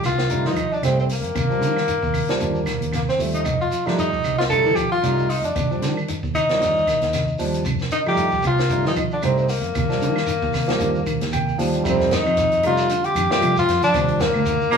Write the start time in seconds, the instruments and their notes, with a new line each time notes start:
0.03 fingered electric bass C2, clean electric guitar C3, tenor saxophone F4, kick, snare, closed hi-hat, claves, shekere
0.18 snare, shekere
0.30 clean electric guitar D3, tine electric piano G3 A3 D#4, closed hi-hat, shekere
0.45 fingered electric bass F3, tenor saxophone D#4, snare, shekere
0.56 clean electric guitar D#3, kick, closed hi-hat, claves, shekere
0.72 tenor saxophone D4, shekere
0.82 fingered electric bass C2, clean electric guitar C3, tine electric piano G3 A3 C4, tenor saxophone C4, snare, closed hi-hat, claves, shekere
0.99 tenor saxophone C4, shekere
1.09 tenor saxophone A#3, open hi-hat, shekere
1.23 fingered electric bass F2, closed hi-hat, shekere
1.35 fingered electric bass D#2, clean electric guitar C3, kick, closed hi-hat, claves, shekere
1.50 tine electric piano F3 G3 D4, muted fingered electric bass stroke, shekere
1.61 clean electric guitar D3, fingered electric bass D#3, closed hi-hat, shekere
1.76 snare, claves, shekere
1.88 clean electric guitar D#3, closed hi-hat, shekere
2.03 fingered electric bass D#2, kick, shekere
2.14 clean electric guitar C3, kick, open hi-hat, claves, shekere
2.29 tine electric piano F3 G3 D4, snare, closed hi-hat, shekere
2.40 fingered electric bass D#2, clean electric guitar D3, closed hi-hat, shekere
2.55 shekere
2.66 clean electric guitar D#3, kick, snare, closed hi-hat, claves, shekere
2.81 fingered electric bass D#2, closed hi-hat, shekere
2.92 clean electric guitar C3, tenor saxophone A#3, kick, snare, closed hi-hat, claves, shekere
3.08 tenor saxophone C4, snare, shekere
3.19 fingered electric bass D#2, tine electric piano F3 G3 A3, open hi-hat, shekere
3.34 tenor saxophone D#4, closed hi-hat, shekere
3.45 fingered electric bass F2, clean electric guitar C3, kick, closed hi-hat, claves, shekere
3.61 tenor saxophone F4, shekere
3.71 clean electric guitar F3, closed hi-hat, shekere
3.86 fingered electric bass F3, tine electric piano G3 A3 D#4, tenor saxophone D4, snare, claves, shekere
3.98 clean electric guitar D#3, tenor saxophone D#4, closed hi-hat, shekere
4.13 kick, shekere
4.24 fingered electric bass C2, clean electric guitar C3, kick, closed hi-hat, claves, shekere
4.38 tenor saxophone F4, snare, shekere
4.49 clean electric guitar D3, tine electric piano G3 A3 D#4, tenor saxophone A4, closed hi-hat, shekere
4.65 fingered electric bass F3, shekere
4.76 clean electric guitar D#3, tenor saxophone G4, kick, closed hi-hat, claves, shekere
4.92 tenor saxophone F4, shekere
5.03 fingered electric bass C2, clean electric guitar C3, tine electric piano G3 A3 D#4, closed hi-hat, claves, shekere
5.18 shekere
5.30 tenor saxophone D#4, open hi-hat, shekere
5.43 fingered electric bass F2, tenor saxophone D4, closed hi-hat, shekere
5.56 fingered electric bass D#2, clean electric guitar C3, kick, closed hi-hat, claves, shekere
5.70 tine electric piano F3 G3 D4, muted fingered electric bass stroke, shekere
5.81 clean electric guitar D3, fingered electric bass D#3, snare, closed hi-hat, shekere
5.97 claves, shekere
6.08 clean electric guitar D#3, closed hi-hat, shekere
6.23 fingered electric bass D#2, kick, shekere
6.35 clean electric guitar C3, tenor saxophone D#4, kick, closed hi-hat, claves, shekere
6.49 tine electric piano F3 G3 D5, snare, closed hi-hat, shekere
6.60 fingered electric bass D#2, clean electric guitar D3, snare, closed hi-hat, shekere
6.77 shekere
6.87 clean electric guitar D#3, kick, snare, closed hi-hat, claves, shekere
7.01 fingered electric bass D#2, snare, closed hi-hat, shekere
7.13 clean electric guitar C3, snare, closed hi-hat, claves, shekere
7.27 shekere
7.39 fingered electric bass D#2, tine electric piano F3 G3 D4, open hi-hat, shekere
7.54 closed hi-hat, shekere
7.65 fingered electric bass F2, clean electric guitar C3, kick, closed hi-hat, claves, shekere
7.79 snare, shekere
7.91 clean electric guitar D3, tenor saxophone D#4, closed hi-hat, shekere
8.05 fingered electric bass F3, tine electric piano G3 A3 D#4, tenor saxophone G4, claves, shekere
8.16 clean electric guitar D#3, closed hi-hat, shekere
8.31 kick, shekere
8.42 fingered electric bass C2, clean electric guitar C3, kick, closed hi-hat, claves, shekere
8.47 tenor saxophone F4
8.58 snare, shekere
8.69 clean electric guitar D3, tine electric piano G3 A3 D#4, closed hi-hat, shekere
8.85 fingered electric bass F3, tenor saxophone D#4, snare, shekere
8.96 clean electric guitar D#3, kick, closed hi-hat, claves, shekere
9.11 tenor saxophone D4, shekere
9.22 fingered electric bass C2, clean electric guitar C3, tine electric piano G3 A3 D#4, tenor saxophone C4, closed hi-hat, claves, shekere
9.38 tenor saxophone C4, shekere
9.49 tenor saxophone A#3, open hi-hat, shekere
9.63 fingered electric bass F2, closed hi-hat, shekere
9.75 fingered electric bass D#2, clean electric guitar C3, kick, closed hi-hat, claves, shekere
9.89 tine electric piano F3 G3 D4, muted fingered electric bass stroke, snare, shekere
10.01 clean electric guitar D3, fingered electric bass D#3, closed hi-hat, shekere
10.15 snare, claves, shekere
10.26 clean electric guitar D#3, closed hi-hat, shekere
10.42 fingered electric bass D#2, kick, shekere
10.54 clean electric guitar C3, kick, snare, open hi-hat, claves, shekere
10.67 tine electric piano F3 G3 A#3, snare, closed hi-hat, shekere
10.80 fingered electric bass D#2, clean electric guitar D3, closed hi-hat, shekere
10.95 shekere
11.06 clean electric guitar D#3, kick, closed hi-hat, claves, shekere
11.21 fingered electric bass D#2, snare, closed hi-hat, shekere
11.32 clean electric guitar C3, tine electric piano G5, kick, closed hi-hat, claves, shekere
11.48 shekere
11.58 fingered electric bass D#2, tine electric piano F3 G3 D4 F5, open hi-hat, shekere
11.74 closed hi-hat, shekere
11.84 fingered electric bass F2, tine electric piano G3 A3 D#4, muted clean electric guitar stroke, kick, closed hi-hat, claves, shekere
11.89 tenor saxophone C4
12.00 kick, snare
12.11 clean electric guitar D3, tenor saxophone D#4, snare, closed hi-hat, shekere
12.26 fingered electric bass F2, claves, shekere
12.37 clean electric guitar D#3, kick, closed hi-hat, shekere
12.52 closed hi-hat, shekere
12.63 clean electric guitar C3, tine electric piano G3 A3 D#4, tenor saxophone F4, closed hi-hat, claves
12.77 shekere
12.89 clean electric guitar D3, closed hi-hat, shekere
13.04 tenor saxophone G4, closed hi-hat
13.15 fingered electric bass F2, clean electric guitar D#3, closed hi-hat, claves, shekere
13.30 tine electric piano G3 A3 F4, tenor saxophone G4, snare, shekere
13.42 clean electric guitar C3, fingered electric bass F3, closed hi-hat, claves
13.57 tenor saxophone F4, shekere
13.68 fingered electric bass F2, snare, closed hi-hat, shekere
13.82 fingered electric bass F3, tenor saxophone D4, closed hi-hat, shekere
13.93 fingered electric bass D#2, clean electric guitar C3, tine electric piano F3 G3 D4, kick, closed hi-hat, claves, shekere
14.08 kick, closed hi-hat
14.20 clean electric guitar D3, tenor saxophone A#3, snare, closed hi-hat, shekere
14.34 fingered electric bass D2, claves, shekere
14.45 clean electric guitar D#3, kick, closed hi-hat, shekere
14.61 shekere
14.71 clean electric guitar C3, tine electric piano F3 G3 D4, baritone saxophone A#3, closed hi-hat, claves